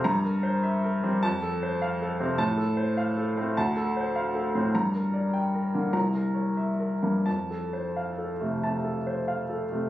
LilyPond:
<<
  \new Staff \with { instrumentName = "Grand piano" } { \time 4/4 \key f \major \tempo 4 = 101 << { bes''8 r4. a''8 r4. | a''8 r4. a''8 r4. | bes''8 r4. bes''8 r4. | a''8 r2. r8 | } \\ { \tuplet 3/2 { r8 bes'8 c''8 e''8 bes'8 g8 r8 a'8 c''8 f''8 a'8 c8 } | \tuplet 3/2 { r8 a'8 c''8 f''8 a'8 a8 r8 a'8 c''8 f''8 a'8 a,8 } | \tuplet 3/2 { r8 bes'8 d''8 g''8 bes'8 d8 r8 bes'8 des''8 e''8 bes'8 g,8 } | \tuplet 3/2 { r8 a'8 c''8 f''8 a'8 c8 a''8 a'8 c''8 f''8 a'8 c8 } | } >> }
  \new Staff \with { instrumentName = "Grand piano" } { \clef bass \time 4/4 \key f \major g,4~ \tuplet 3/2 { g,4 c'8 } f,4~ \tuplet 3/2 { f,4 c'8 } | a,4~ \tuplet 3/2 { a,4 c'8 } d,4~ \tuplet 3/2 { d,4 c'8 } | g,4~ \tuplet 3/2 { g,4 bes8 } c,4~ \tuplet 3/2 { c,4 bes8 } | f,4~ \tuplet 3/2 { f,4 a8 } c8 r8 \tuplet 3/2 { r4 a8 } | }
>>